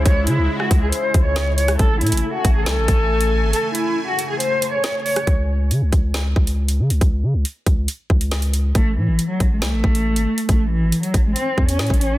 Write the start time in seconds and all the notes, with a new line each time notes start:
Already playing: C#3 G#3 E4
0.06 C#2 C#5, kick, closed hi-hat
0.27 C#3 E4, closed hi-hat
0.38 C#2
0.60 F#4, cross-stick
0.71 C#2, kick, closed hi-hat
0.82 G#4
0.92 C5, closed hi-hat
1.14 C#2, kick, closed hi-hat
1.25 C#5
1.36 snare, closed hi-hat
1.57 C#5, closed hi-hat
1.68 cross-stick, closed hi-hat
1.79 A1 A3 A4 G#5, kick, closed hi-hat
2.01 A2 E4, closed hi-hat
2.07 closed hi-hat
2.12 A1, closed hi-hat
2.17 closed hi-hat
2.34 F#4
2.45 A1, kick, closed hi-hat
2.56 G#4
2.66 C2 A4, snare, closed hi-hat
2.77 A1
2.88 A1, kick, closed hi-hat
3.21 closed hi-hat
3.42 G#1
3.53 A4, closed hi-hat
3.75 E4, closed hi-hat
4.08 F#4
4.19 closed hi-hat
4.30 G#4
4.40 C5, closed hi-hat
4.62 closed hi-hat
4.73 C#5
4.84 snare, closed hi-hat
5.05 C#5, open hi-hat
5.16 cross-stick, closed hi-hat
5.27 C#2, kick, closed hi-hat
5.71 C#3, closed hi-hat
5.82 C#2
5.92 C#2, kick, closed hi-hat
6.14 snare, closed hi-hat
6.36 C#2, kick
6.47 closed hi-hat
6.68 closed hi-hat
6.79 C#3
6.90 C#2, closed hi-hat
7.01 C#2, kick, closed hi-hat
7.23 C#3
7.34 C#2
7.45 closed hi-hat
7.66 C#2, kick, closed hi-hat
7.88 closed hi-hat
8.10 C#2, kick
8.21 closed hi-hat
8.31 snare, closed hi-hat
8.42 closed hi-hat
8.53 closed hi-hat
8.75 A1 A3, kick, closed hi-hat
8.97 A2 E3
9.08 A1
9.19 closed hi-hat
9.29 F#3
9.40 A1, kick, closed hi-hat
9.51 G#3
9.62 C2 A3, snare, closed hi-hat
9.73 A1
9.84 A1, kick
9.95 closed hi-hat
10.16 G#1, closed hi-hat
10.38 closed hi-hat
10.49 A1 A3, kick, closed hi-hat
10.71 E3
10.82 G#1
10.92 closed hi-hat
11.03 F#3, closed hi-hat
11.14 A1, kick, closed hi-hat
11.25 G#3
11.36 C4, closed hi-hat
11.58 E2, kick
11.69 C#4, closed hi-hat
11.79 A2, snare, closed hi-hat
11.87 A1, kick, closed hi-hat
11.94 closed hi-hat
12.01 C#4, closed hi-hat